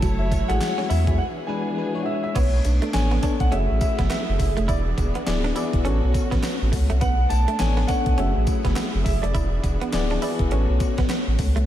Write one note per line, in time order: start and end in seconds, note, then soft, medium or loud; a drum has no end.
0.00 0.42 F#1 loud
0.00 1.18 F#3 medium
0.00 0.15 F#3 medium
0.00 0.32 A3 medium
0.00 0.32 E4 medium
0.00 1.17 E4 medium
0.00 0.32 F#4 medium
0.00 1.17 F#4 medium
0.00 0.32 A4 medium
0.00 1.17 C#5 medium
0.00 0.21 A5 loud
0.00 kick loud
0.00 closed hi-hat medium
0.00 tambourine medium
0.19 0.49 E5 medium
0.32 muted clean electric guitar stroke soft
0.32 kick medium
0.32 closed hi-hat medium
0.32 tambourine medium
0.48 0.59 A1 medium
0.48 0.90 G#3 medium
0.48 0.58 A3 medium
0.48 0.90 E4 medium
0.48 0.90 F#4 medium
0.48 0.91 G#4 loud
0.48 0.91 F#5 loud
0.48 closed hi-hat soft
0.61 muted clean electric guitar stroke soft
0.61 snare loud
0.61 clap medium
0.61 closed hi-hat medium
0.61 tambourine medium
0.78 0.86 C#4 medium
0.78 snare medium
0.89 1.19 E2 medium
0.89 1.02 E4 medium
0.89 1.17 E5 medium
0.89 open hi-hat medium
0.89 tambourine medium
1.07 1.19 G#3 medium
1.07 1.19 E4 medium
1.07 1.19 F#4 medium
1.07 1.19 G#4 medium
1.07 kick loud
1.07 closed hi-hat medium
1.18 2.34 E3 medium
1.18 2.34 B3 medium
1.18 2.33 D4 medium
1.18 2.34 F#4 medium
1.18 2.34 G#4 medium
1.18 1.25 F#5 medium
1.47 1.71 G#3 medium
1.47 1.72 D4 medium
1.47 1.72 E4 medium
1.47 1.72 B4 medium
1.47 2.02 G#5 medium
1.77 1.90 G#3 medium
1.77 1.91 D4 medium
1.77 1.91 E4 medium
1.77 1.91 B4 medium
1.94 2.35 G#3 medium
1.94 2.35 D4 medium
1.94 2.36 E4 medium
1.94 2.36 C#5 medium
2.03 2.22 E5 medium
2.03 2.06 F#5 medium
2.24 2.36 E5 loud
2.35 2.60 B1 loud
2.35 3.50 A3 medium
2.35 3.51 B3 medium
2.35 2.48 B3 medium
2.35 3.50 D4 medium
2.35 2.95 C#5 loud
2.35 kick loud
2.35 closed hi-hat medium
2.35 crash medium
2.35 tambourine medium
2.65 2.80 B1 medium
2.65 muted clean electric guitar stroke soft
2.65 closed hi-hat medium
2.65 tambourine medium
2.82 2.90 A3 medium
2.82 closed hi-hat soft
2.93 3.19 A1 medium
2.93 3.17 B3 medium
2.93 3.17 D4 medium
2.93 3.17 A4 medium
2.93 3.17 C#5 medium
2.93 3.37 G#5 loud
2.93 muted clean electric guitar stroke soft
2.93 snare loud
2.93 clap medium
2.93 closed hi-hat medium
2.93 tambourine medium
3.11 3.20 B3 medium
3.11 snare medium
3.22 3.46 B3 medium
3.22 3.46 D4 medium
3.22 3.36 D4 medium
3.22 3.46 A4 medium
3.22 3.47 C#5 medium
3.22 kick medium
3.22 closed hi-hat medium
3.22 tambourine medium
3.40 3.50 B1 medium
3.40 3.52 F#5 loud
3.40 kick loud
3.40 closed hi-hat medium
3.51 3.67 F#1 loud
3.51 4.68 F#3 medium
3.51 4.39 A3 medium
3.51 4.68 A3 medium
3.51 3.64 C#4 medium
3.51 4.68 C#4 medium
3.51 4.67 E4 medium
3.51 4.39 F#4 medium
3.51 4.39 G#4 medium
3.51 5.83 G#4 medium
3.51 3.60 D#5 medium
3.51 3.80 E5 loud
3.51 closed hi-hat medium
3.58 4.43 E5 medium
3.71 3.80 A1 medium
3.81 4.09 E5 medium
3.81 muted clean electric guitar stroke soft
3.81 kick loud
3.81 closed hi-hat medium
3.81 tambourine medium
3.99 4.09 F#1 medium
3.99 4.07 B3 medium
3.99 kick loud
3.99 snare medium
3.99 closed hi-hat medium
4.10 4.23 B3 medium
4.10 4.70 E5 medium
4.10 snare loud
4.10 clap medium
4.10 closed hi-hat medium
4.10 tambourine medium
4.29 4.38 F#1 medium
4.39 4.54 F#1 loud
4.39 muted clean electric guitar stroke soft
4.39 kick medium
4.39 open hi-hat medium
4.39 tambourine medium
4.57 4.67 F1 medium
4.57 4.65 A3 medium
4.57 closed hi-hat soft
4.68 4.93 E1 loud
4.68 5.84 E3 medium
4.68 5.84 B3 medium
4.68 5.84 D4 medium
4.68 4.81 E4 medium
4.68 6.99 F#4 medium
4.68 5.52 D5 medium
4.68 kick loud
4.68 closed hi-hat medium
4.68 tambourine medium
4.98 5.12 E1 loud
4.98 muted clean electric guitar stroke soft
4.98 kick medium
4.98 closed hi-hat medium
4.98 tambourine medium
5.15 5.24 B3 medium
5.15 closed hi-hat medium
5.27 5.52 D1 loud
5.27 5.50 B3 medium
5.27 5.50 E4 medium
5.27 5.50 G#4 medium
5.27 5.51 D5 medium
5.27 muted clean electric guitar stroke soft
5.27 snare loud
5.27 clap medium
5.27 closed hi-hat medium
5.27 tambourine medium
5.44 5.53 D4 medium
5.44 snare medium
5.56 5.79 B3 medium
5.56 5.68 E4 medium
5.56 5.79 E4 medium
5.56 5.79 G#4 medium
5.56 5.80 D5 loud
5.56 closed hi-hat medium
5.56 tambourine medium
5.73 5.83 E1 medium
5.73 kick loud
5.73 closed hi-hat medium
5.84 6.00 A1 loud
5.84 8.16 A3 medium
5.84 6.72 B3 medium
5.84 5.97 C#4 loud
5.84 7.00 C#4 medium
5.84 6.72 F#4 medium
5.84 6.73 A4 medium
5.84 6.73 C#5 medium
5.84 closed hi-hat medium
6.04 6.13 B1 medium
6.14 muted clean electric guitar stroke soft
6.14 kick loud
6.14 closed hi-hat medium
6.14 tambourine medium
6.31 6.42 A1 medium
6.31 6.40 B3 medium
6.31 kick medium
6.31 snare medium
6.31 closed hi-hat medium
6.43 6.56 B3 medium
6.43 snare loud
6.43 clap medium
6.43 closed hi-hat medium
6.43 tambourine medium
6.62 6.71 A1 loud
6.72 6.87 C#2 loud
6.72 muted clean electric guitar stroke soft
6.72 kick medium
6.72 open hi-hat medium
6.72 tambourine medium
6.90 7.00 C2 medium
6.90 6.98 A3 medium
6.90 closed hi-hat soft
7.01 7.26 B1 loud
7.01 7.14 B3 medium
7.01 8.17 B3 medium
7.01 8.17 D4 medium
7.01 7.31 F#5 loud
7.01 kick loud
7.01 closed hi-hat medium
7.01 tambourine medium
7.30 7.46 B1 loud
7.30 7.60 A5 loud
7.30 muted clean electric guitar stroke medium
7.30 closed hi-hat medium
7.30 tambourine medium
7.48 7.56 A3 medium
7.48 closed hi-hat medium
7.59 7.84 A1 loud
7.59 7.83 B3 medium
7.59 7.83 D4 medium
7.59 7.83 A4 medium
7.59 7.84 C#5 medium
7.59 7.86 G#5 loud
7.59 muted clean electric guitar stroke soft
7.59 snare loud
7.59 clap loud
7.59 closed hi-hat medium
7.59 tambourine medium
7.77 7.85 B3 medium
7.77 snare medium
7.87 8.12 B3 medium
7.87 8.01 D4 medium
7.87 8.12 D4 medium
7.87 8.13 A4 medium
7.87 8.13 C#5 medium
7.87 9.08 F#5 loud
7.87 kick medium
7.87 closed hi-hat medium
7.87 tambourine medium
8.06 8.16 B1 medium
8.06 kick loud
8.06 closed hi-hat medium
8.18 8.33 F#1 loud
8.18 9.33 F#3 medium
8.18 9.33 A3 medium
8.18 9.06 A3 medium
8.18 9.33 C#4 medium
8.18 8.31 C#4 medium
8.18 9.33 E4 medium
8.18 9.06 F#4 medium
8.18 10.49 G#4 medium
8.18 9.06 G#4 medium
8.18 9.06 E5 medium
8.18 closed hi-hat medium
8.36 8.46 A1 loud
8.47 muted clean electric guitar stroke soft
8.47 kick loud
8.47 closed hi-hat medium
8.47 tambourine medium
8.65 8.75 F#1 medium
8.65 8.73 B3 medium
8.65 kick medium
8.65 snare medium
8.65 closed hi-hat medium
8.76 8.89 B3 medium
8.76 snare loud
8.76 clap loud
8.76 closed hi-hat medium
8.76 tambourine medium
8.94 9.04 F#1 loud
9.04 9.20 F#1 medium
9.04 9.23 E5 medium
9.04 muted clean electric guitar stroke soft
9.04 kick medium
9.04 open hi-hat medium
9.04 tambourine medium
9.22 9.33 F1 medium
9.22 9.31 A3 medium
9.22 10.35 D5 medium
9.22 closed hi-hat soft
9.34 9.59 E1 loud
9.34 10.50 E3 medium
9.34 10.50 B3 medium
9.34 10.50 D4 medium
9.34 9.47 E4 medium
9.34 11.65 F#4 medium
9.34 kick loud
9.34 closed hi-hat medium
9.34 tambourine medium
9.64 9.78 E1 loud
9.64 muted clean electric guitar stroke soft
9.64 kick medium
9.64 closed hi-hat medium
9.64 tambourine medium
9.81 9.90 B3 medium
9.81 closed hi-hat soft
9.93 10.17 D1 loud
9.93 10.16 B3 medium
9.93 10.16 E4 medium
9.93 10.16 G#4 medium
9.93 10.17 D5 loud
9.93 muted clean electric guitar stroke soft
9.93 snare loud
9.93 clap medium
9.93 closed hi-hat medium
9.93 tambourine medium
10.10 10.19 D4 medium
10.10 snare medium
10.22 10.45 B3 loud
10.22 10.35 E4 medium
10.22 10.46 E4 medium
10.22 10.46 G#4 medium
10.22 10.46 D5 loud
10.22 open hi-hat medium
10.22 tambourine medium
10.39 10.49 E1 medium
10.39 kick loud
10.39 closed hi-hat medium
10.51 10.66 A1 loud
10.51 11.66 A3 medium
10.51 11.39 B3 medium
10.51 11.66 C#4 medium
10.51 10.64 C#4 medium
10.51 11.39 F#4 medium
10.51 11.39 A4 medium
10.51 11.39 C#5 medium
10.51 closed hi-hat medium
10.69 10.79 B1 loud
10.80 muted clean electric guitar stroke soft
10.80 kick loud
10.80 closed hi-hat medium
10.80 tambourine medium
10.98 11.08 A1 medium
10.98 11.06 B3 medium
10.98 kick loud
10.98 snare medium
10.98 closed hi-hat medium
11.09 11.22 B3 medium
11.09 snare loud
11.09 clap medium
11.09 closed hi-hat medium
11.09 tambourine medium
11.27 11.37 A1 medium
11.39 11.54 C#2 loud
11.39 muted clean electric guitar stroke soft
11.39 kick medium
11.39 open hi-hat medium
11.39 tambourine medium
11.56 11.66 C2 medium
11.56 11.64 A3 medium
11.56 closed hi-hat soft